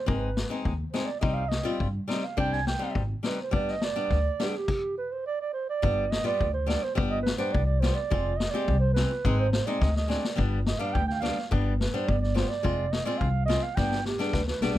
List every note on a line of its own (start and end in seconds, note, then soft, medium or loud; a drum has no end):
0.06 0.43 G#1 medium
0.06 0.29 G#3 medium
0.06 0.29 C4 medium
0.06 0.29 D#4 medium
0.06 0.62 B4 medium
0.06 kick medium
0.37 snare medium
0.50 0.72 G#3 medium
0.50 0.72 C4 soft
0.50 0.73 D#4 medium
0.65 0.83 D#2 medium
0.65 kick medium
0.93 1.08 G#3 medium
0.93 1.08 C4 medium
0.93 1.09 D#4 medium
0.93 1.07 C5 medium
0.93 snare medium
1.05 1.19 D5 medium
1.20 1.57 C2 medium
1.20 1.44 G3 medium
1.20 1.44 C4 medium
1.20 1.44 D#4 medium
1.20 1.35 D#5 medium
1.20 kick medium
1.34 1.50 F5 loud
1.48 1.79 D#5 medium
1.48 snare medium
1.63 1.86 G3 medium
1.63 1.87 C4 medium
1.63 1.87 F4 medium
1.80 1.98 G2 medium
1.80 kick medium
2.08 2.23 G3 medium
2.08 2.23 C4 medium
2.08 2.23 D#4 medium
2.08 2.26 D#5 medium
2.08 snare medium
2.24 2.38 F5 medium
2.37 2.72 C2 medium
2.37 2.59 G3 medium
2.37 2.59 C4 medium
2.37 2.59 D4 medium
2.37 2.55 G5 loud
2.37 kick medium
2.53 2.67 G#5 medium
2.53 snare soft
2.67 2.94 G5 medium
2.67 snare medium
2.79 3.02 G3 medium
2.79 3.02 C4 medium
2.79 3.02 D#4 medium
2.95 3.13 G#1 medium
2.95 kick medium
3.23 3.38 G3 medium
3.23 3.38 C4 soft
3.23 3.39 D#4 medium
3.23 3.38 B4 medium
3.23 snare medium
3.42 3.54 C5 medium
3.51 3.87 G1 medium
3.51 3.74 G3 medium
3.51 3.74 B3 medium
3.51 3.74 D4 medium
3.51 kick medium
3.55 3.72 D5 medium
3.68 3.85 D#5 medium
3.68 snare soft
3.81 4.45 D5 loud
3.81 snare medium
3.96 4.17 G3 medium
3.96 4.17 B3 medium
3.96 4.18 D4 medium
4.10 4.28 D2 medium
4.10 kick medium
4.10 snare soft
4.40 4.54 G3 medium
4.40 4.54 B3 medium
4.40 4.54 D4 medium
4.40 snare medium
4.44 4.50 G4 medium
4.48 4.59 G#4 medium
4.58 4.97 G4 medium
4.68 kick medium
4.68 crash medium
4.98 5.13 B4 medium
5.12 5.26 C5 medium
5.26 5.39 D5 medium
5.41 5.53 D5 medium
5.53 5.67 C5 medium
5.70 6.12 D5 medium
5.82 6.17 G1 medium
5.82 6.04 G3 medium
5.82 6.04 B3 medium
5.82 6.05 D4 medium
5.82 kick medium
6.11 6.25 D#5 medium
6.11 snare medium
6.24 6.46 G3 medium
6.24 6.47 B3 medium
6.24 6.47 F4 medium
6.24 6.52 D5 medium
6.40 6.75 D2 medium
6.40 kick medium
6.54 6.71 C5 medium
6.67 6.82 G3 medium
6.67 6.82 B3 medium
6.67 6.82 D4 medium
6.67 6.85 D5 loud
6.67 snare medium
6.83 6.95 C5 medium
6.95 7.31 G1 medium
6.95 7.18 G3 medium
6.95 7.18 B3 medium
6.95 7.18 D4 medium
6.95 6.97 C5 medium
6.95 kick medium
7.09 7.22 D#5 medium
7.23 7.37 B4 medium
7.23 snare medium
7.38 7.61 G3 medium
7.38 7.61 B3 medium
7.38 7.61 D4 medium
7.38 7.54 C5 medium
7.53 7.89 C2 loud
7.53 7.65 D5 medium
7.53 kick medium
7.66 7.82 D5 medium
7.80 7.97 G3 medium
7.80 7.97 B3 medium
7.80 7.98 F4 medium
7.80 7.96 C5 medium
7.80 snare medium
7.94 8.38 D5 medium
8.10 8.46 F1 medium
8.10 8.32 G#3 medium
8.10 8.32 C4 medium
8.10 8.33 F4 medium
8.10 kick medium
8.37 8.52 D#5 medium
8.37 snare medium
8.51 8.75 G#3 medium
8.51 8.75 C4 medium
8.51 8.79 D5 medium
8.55 8.76 G4 medium
8.68 9.02 C2 loud
8.68 kick medium
8.80 8.93 C5 medium
8.94 9.11 G#3 medium
8.94 9.11 C4 medium
8.94 9.11 F4 medium
8.94 9.35 B4 medium
8.94 snare medium
9.25 9.59 G#1 loud
9.25 9.47 G#3 medium
9.25 9.47 C4 medium
9.25 9.47 D#4 medium
9.25 kick medium
9.39 9.51 C5 medium
9.52 9.68 C5 medium
9.52 snare medium
9.66 9.89 G#3 medium
9.66 9.89 C4 medium
9.66 9.89 D#4 medium
9.66 9.83 D5 medium
9.81 10.15 D2 loud
9.81 9.96 D#5 medium
9.81 kick medium
9.81 snare soft
9.96 10.12 D#5 medium
9.96 snare soft
10.08 10.23 G#3 medium
10.08 10.24 C4 medium
10.08 10.24 D4 medium
10.08 10.39 D5 medium
10.08 snare medium
10.24 snare medium
10.36 10.72 G1 medium
10.36 10.58 G3 medium
10.36 10.59 B3 medium
10.36 10.59 D4 medium
10.36 kick medium
10.66 10.80 D#5 medium
10.66 snare medium
10.79 11.01 G3 medium
10.79 11.01 B3 medium
10.79 11.02 D4 medium
10.79 10.95 F5 medium
10.93 11.29 D2 loud
10.93 11.07 G5 loud
10.93 kick medium
11.07 11.13 G5 medium
11.07 snare soft
11.12 11.15 F5 medium
11.12 11.19 G5 medium
11.20 11.37 G3 medium
11.20 11.37 B3 soft
11.20 11.37 D4 medium
11.20 11.48 F5 medium
11.20 snare medium
11.38 snare soft
11.51 11.86 G1 loud
11.51 11.73 G3 medium
11.51 11.73 B3 medium
11.51 11.73 D4 medium
11.51 kick medium
11.79 11.95 B4 medium
11.79 snare medium
11.94 12.15 G3 medium
11.94 12.15 B3 medium
11.94 12.15 D4 medium
11.94 12.09 C5 medium
12.08 12.42 G1 loud
12.08 12.21 D5 medium
12.08 kick medium
12.22 12.37 D5 medium
12.22 snare soft
12.35 12.50 G3 medium
12.35 12.50 B3 medium
12.35 12.50 F4 medium
12.35 12.51 C5 medium
12.35 snare medium
12.49 12.94 D5 medium
12.49 snare soft
12.63 12.98 F1 medium
12.63 12.85 G#3 medium
12.63 12.85 C4 medium
12.63 12.86 F4 medium
12.63 kick medium
12.92 13.06 D#5 medium
12.92 snare medium
13.05 13.27 G#3 medium
13.05 13.28 C4 medium
13.05 13.28 F4 medium
13.05 13.19 D5 medium
13.18 13.55 C2 loud
13.18 13.45 F5 medium
13.18 kick medium
13.46 13.63 G#3 medium
13.46 13.63 C4 medium
13.46 13.63 F4 medium
13.46 13.64 D#5 loud
13.46 snare medium
13.62 13.77 F5 medium
13.75 14.11 G1 medium
13.75 13.98 G3 medium
13.75 13.99 B3 medium
13.75 13.99 D4 medium
13.75 14.04 G5 medium
13.75 kick medium
13.75 snare soft
13.92 snare soft
14.05 14.22 G4 medium
14.05 snare medium
14.19 14.40 G3 medium
14.19 14.41 B3 medium
14.19 14.41 D4 medium
14.19 14.36 G#4 medium
14.19 snare soft
14.33 14.50 D2 medium
14.33 14.47 B4 medium
14.33 kick medium
14.33 snare medium
14.47 14.64 B4 medium
14.47 snare medium
14.61 14.74 B1 medium
14.61 14.76 G3 medium
14.61 14.76 B3 medium
14.61 14.76 D4 medium
14.61 14.76 G#4 medium
14.61 snare medium